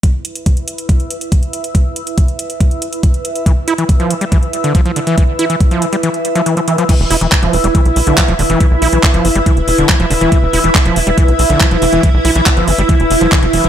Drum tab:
CC |----------------|----------------|----------------|----------------|
HH |x-xxxxxxxxxxxxxx|x-xxxxxxxxxxxxxx|x-xxxxxxxxxxxxxx|x-xxxxxxxxxxxxxx|
CP |----------------|----------------|----------------|----------------|
BD |o---o---o---o---|o---o---o---o---|o---o---o---o---|o---o-----------|

CC |x---------------|----------------|----------------|----------------|
HH |x-oxxxoxxxoxxxox|x-oxxxoxxxoxxxox|x-oxxxoxxxoxxxox|x-oxxxoxxxoxxxox|
CP |----x-------x---|----x-------x---|----x-------x---|----x-------x---|
BD |o---o---o---o---|o---o---o---o---|o---o---o---o---|o---o---o---o---|